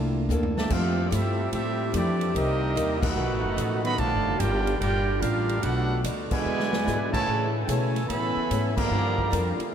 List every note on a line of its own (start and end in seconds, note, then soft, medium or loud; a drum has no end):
0.00 0.28 C2 medium
0.00 0.17 C3 medium
0.00 0.66 A3 medium
0.00 0.17 A#3 medium
0.00 0.66 A#3 soft
0.00 0.67 D4 medium
0.00 0.18 E4 medium
0.00 0.67 E4 medium
0.00 0.18 A4 medium
0.29 0.69 D2 loud
0.29 0.58 C3 medium
0.29 0.59 A#3 medium
0.29 0.59 E4 medium
0.29 0.59 A4 medium
0.29 floor tom medium
0.29 hi-hat pedal medium
0.43 floor tom medium
0.57 0.70 A#2 loud
0.57 0.70 E3 medium
0.57 0.69 A3 medium
0.57 0.70 G4 medium
0.57 0.70 D5 medium
0.57 0.70 E5 loud
0.57 0.70 A5 loud
0.57 snare loud
0.70 1.10 F2 loud
0.70 0.99 F3 soft
0.70 2.33 G3 medium
0.70 1.07 A3 medium
0.70 0.99 A3 soft
0.70 2.33 A3 medium
0.70 1.07 C4 medium
0.70 2.33 C4 medium
0.70 1.08 C4 medium
0.70 1.00 E4 soft
0.70 1.07 F4 medium
0.70 3.14 G4 medium
0.70 1.08 G4 medium
0.70 1.00 G4 soft
0.70 1.08 A4 medium
0.70 1.08 F5 loud
0.70 kick medium
0.70 crash medium
1.08 1.39 F3 medium
1.08 1.40 A3 medium
1.08 1.40 E4 medium
1.08 1.12 D5 medium
1.08 kick soft
1.12 1.51 G2 medium
1.12 1.50 A3 medium
1.12 1.50 C4 medium
1.12 1.52 C4 medium
1.12 1.50 E4 medium
1.12 1.40 G4 medium
1.12 1.53 G4 medium
1.12 1.52 A4 medium
1.12 1.52 E5 medium
1.12 hi-hat pedal medium
1.12 ride medium
1.51 1.93 A2 medium
1.51 1.81 F3 soft
1.51 1.90 A3 medium
1.51 1.81 A3 medium
1.51 1.90 C4 medium
1.51 1.91 C4 medium
1.51 1.90 E4 medium
1.51 1.82 E4 soft
1.51 1.91 G4 medium
1.51 1.91 A4 loud
1.51 1.91 E5 loud
1.51 kick soft
1.51 ride medium
1.55 1.82 G4 medium
1.92 2.33 F2 loud
1.92 2.31 E3 medium
1.92 2.21 F3 medium
1.92 2.31 A3 medium
1.92 2.22 A3 medium
1.92 2.32 C4 medium
1.92 2.31 D4 medium
1.92 2.22 E4 medium
1.92 2.22 G4 medium
1.92 2.33 G4 medium
1.92 kick soft
1.92 hi-hat pedal soft
1.92 ride medium
1.96 2.33 A4 medium
1.96 2.33 D5 loud
2.21 ride medium
2.34 2.75 C2 loud
2.34 2.63 C3 soft
2.34 3.97 D#3 medium
2.34 2.98 G3 loud
2.34 2.99 A#3 medium
2.34 2.63 A#3 soft
2.34 3.16 A#3 medium
2.34 2.99 C4 loud
2.34 3.16 C4 medium
2.34 2.98 D#4 loud
2.34 2.63 D#4 soft
2.34 2.63 G4 medium
2.34 2.99 G4 medium
2.34 2.99 A#4 medium
2.34 2.99 D#5 loud
2.34 kick soft
2.34 ride medium
2.75 3.15 D#2 loud
2.75 3.04 C3 medium
2.75 3.04 A#3 medium
2.75 3.04 D#4 medium
2.75 3.05 G4 medium
2.75 kick soft
2.75 hi-hat pedal medium
2.75 ride medium
3.01 3.84 A3 loud
3.01 3.84 D#4 loud
3.01 3.84 D#4 medium
3.01 3.84 F#4 loud
3.01 3.84 A4 loud
3.01 3.85 B4 loud
3.01 3.83 F#5 loud
3.01 kick loud
3.01 crash loud
3.14 3.30 B1 medium
3.14 3.44 B2 soft
3.14 3.45 F3 medium
3.14 3.45 A3 soft
3.14 3.98 A3 medium
3.14 3.98 B3 medium
3.14 3.45 D#4 medium
3.30 3.43 A1 medium
3.43 3.56 F#1 medium
3.57 3.97 A1 medium
3.57 3.86 B2 medium
3.57 3.86 F3 medium
3.57 3.86 A3 medium
3.57 3.87 D#4 medium
3.57 kick soft
3.57 hi-hat pedal medium
3.57 ride medium
3.82 3.96 D#3 loud
3.82 3.96 F#3 loud
3.82 3.97 B3 loud
3.82 3.98 A4 medium
3.82 3.97 D#5 loud
3.82 3.98 F#5 loud
3.82 3.98 B5 loud
3.82 ride medium
3.95 4.13 A#1 loud
3.95 4.27 A#2 soft
3.95 4.38 D3 loud
3.95 6.42 D3 medium
3.95 4.38 F3 loud
3.95 5.60 G3 medium
3.95 4.38 A3 loud
3.95 5.60 D4 medium
3.95 4.40 G4 loud
3.95 4.37 D5 loud
3.95 4.39 F5 loud
3.95 4.39 A5 loud
3.95 kick soft
3.95 ride medium
4.00 4.28 G3 soft
4.00 4.28 D4 medium
4.00 4.29 F4 medium
4.13 4.26 G1 medium
4.26 4.39 F1 medium
4.37 4.80 G1 loud
4.37 4.69 A#2 medium
4.37 4.76 G3 medium
4.37 4.76 D4 medium
4.37 4.79 F4 medium
4.37 4.76 G4 medium
4.37 4.79 A#4 medium
4.37 4.79 D5 medium
4.37 4.79 G5 loud
4.37 kick soft
4.37 hi-hat pedal medium
4.37 ride medium
4.42 4.69 G3 medium
4.42 4.70 D4 medium
4.42 4.70 F4 medium
4.67 ride medium
4.77 5.17 G3 medium
4.77 5.17 D4 medium
4.77 5.19 F4 loud
4.77 5.17 G4 medium
4.77 5.19 A#4 loud
4.77 5.19 D5 loud
4.77 5.19 G5 loud
4.81 5.21 G1 medium
4.81 5.10 A#2 soft
4.81 5.10 G3 soft
4.81 5.11 D4 medium
4.81 5.11 F4 medium
4.81 kick soft
4.81 ride medium
5.18 5.62 A1 loud
5.18 5.61 G3 medium
5.18 5.58 D4 medium
5.18 5.61 D4 medium
5.18 5.61 F4 medium
5.18 5.62 G4 medium
5.18 5.62 A#4 medium
5.18 5.62 F5 loud
5.18 kick soft
5.22 5.51 A#2 medium
5.22 5.51 G3 medium
5.22 5.51 D4 medium
5.22 5.51 F4 medium
5.22 hi-hat pedal medium
5.22 ride medium
5.49 ride medium
5.59 5.91 B2 soft
5.59 5.97 A3 loud
5.59 5.91 A3 soft
5.59 6.44 B3 medium
5.59 5.97 D4 loud
5.59 5.99 D4 medium
5.59 5.97 F#4 medium
5.59 6.44 F#4 medium
5.59 5.99 F#5 loud
5.59 ride medium
5.63 6.03 B1 loud
5.63 6.44 A3 medium
5.63 5.92 D4 medium
5.63 5.92 F#4 medium
5.63 6.00 A4 loud
5.63 6.00 B4 medium
5.63 kick soft
6.04 6.29 D2 loud
6.04 6.32 B2 medium
6.04 6.33 A3 medium
6.04 6.33 D4 medium
6.04 6.33 F#4 medium
6.04 kick soft
6.04 hi-hat pedal soft
6.04 ride medium
6.28 7.08 B2 loud
6.28 7.08 D3 loud
6.28 7.07 G#3 medium
6.28 7.09 G#5 loud
6.28 muted upright bass stroke soft
6.28 kick medium
6.28 crash medium
6.32 7.10 E4 loud
6.32 7.10 B4 loud
6.32 7.10 D5 medium
6.44 6.85 E2 medium
6.44 7.25 D3 medium
6.44 6.73 E3 soft
6.44 8.74 E3 medium
6.44 7.26 B3 medium
6.44 6.74 B3 medium
6.44 6.74 D4 soft
6.44 8.74 E4 medium
6.44 6.74 G#4 medium
6.59 snare medium
6.73 snare loud
6.84 7.26 G#2 medium
6.84 7.14 E3 medium
6.84 7.14 B3 medium
6.84 7.14 D4 medium
6.84 7.15 G#4 medium
6.84 snare medium
6.84 hi-hat pedal medium
7.10 7.50 C#3 loud
7.10 7.50 E3 medium
7.10 7.50 A3 medium
7.10 7.51 E4 medium
7.10 7.51 C#5 medium
7.10 7.50 G#5 medium
7.10 7.51 A5 loud
7.10 kick medium
7.10 crash medium
7.26 7.67 A2 loud
7.26 8.74 C#3 medium
7.26 7.56 A3 soft
7.26 7.56 C#4 soft
7.26 7.57 E4 soft
7.26 7.57 G#4 medium
7.26 8.74 A4 medium
7.26 kick soft
7.64 8.08 B2 loud
7.64 8.08 C#3 medium
7.64 8.05 E3 medium
7.64 8.05 A3 medium
7.64 7.96 A3 medium
7.64 8.07 A4 medium
7.64 8.09 C#5 medium
7.64 7.69 G5 medium
7.68 7.97 C#4 medium
7.68 8.09 E4 medium
7.68 7.97 E4 medium
7.68 7.97 G#4 medium
7.68 8.07 G#5 loud
7.68 kick soft
7.68 hi-hat pedal medium
7.68 ride medium
7.96 snare soft
7.96 ride medium
8.06 8.34 A2 medium
8.06 8.72 E3 medium
8.06 8.72 A3 medium
8.06 8.37 A3 soft
8.06 8.71 B3 medium
8.06 8.38 C#4 soft
8.06 8.72 A4 medium
8.06 8.72 E5 loud
8.06 8.73 G#5 medium
8.06 8.73 B5 loud
8.06 kick soft
8.06 ride medium
8.10 8.38 E4 medium
8.10 8.39 G#4 soft
8.36 muted upright bass stroke soft
8.50 8.90 G#2 loud
8.50 8.79 A3 medium
8.50 8.79 C#4 medium
8.50 8.79 E4 medium
8.50 8.79 G#4 medium
8.50 kick soft
8.50 hi-hat pedal medium
8.50 ride medium
8.74 9.53 D3 loud
8.74 9.54 F3 loud
8.74 9.53 A#3 loud
8.74 9.55 G4 medium
8.74 9.54 D5 loud
8.74 9.54 F5 loud
8.74 9.55 A#5 loud
8.74 kick loud
8.74 crash medium
8.90 9.31 G2 loud
8.90 9.72 D3 medium
8.90 9.19 G3 soft
8.90 9.74 G3 medium
8.90 9.74 A#3 medium
8.90 9.19 D4 medium
8.90 9.19 F4 soft
8.90 9.72 F4 medium
8.90 9.20 A#4 medium
9.18 kick medium
9.31 9.57 F2 loud
9.31 9.60 G3 medium
9.31 9.60 D4 medium
9.31 9.60 F4 medium
9.31 9.61 A#4 medium
9.31 kick soft
9.31 hi-hat pedal medium
9.31 ride medium
9.58 muted upright bass stroke soft
9.58 ride medium
9.70 9.74 A3 medium